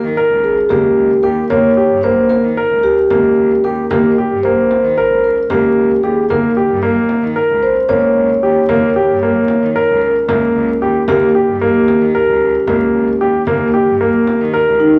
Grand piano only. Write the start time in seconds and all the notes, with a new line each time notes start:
0.17 A#4
0.70 A#3
1.24 G4
1.50 A#3
1.77 G4
2.04 A#3
2.57 A#4
3.11 A#3
3.64 G4
3.91 A#3
4.18 G4
4.45 A#3
4.98 A#4
5.51 A#3
6.04 G4
6.30 A#3
6.57 G4
6.83 A#3
7.36 A#4
7.89 A#3
8.43 G4
8.69 A#3
8.96 G4
9.23 A#3
9.76 A#4
10.28 A#3
10.82 G4
11.08 A#3
11.35 G4
11.61 A#3
12.15 A#4
12.67 A#3
13.21 G4
13.47 A#3
13.74 G4
14.01 A#3
14.53 A#4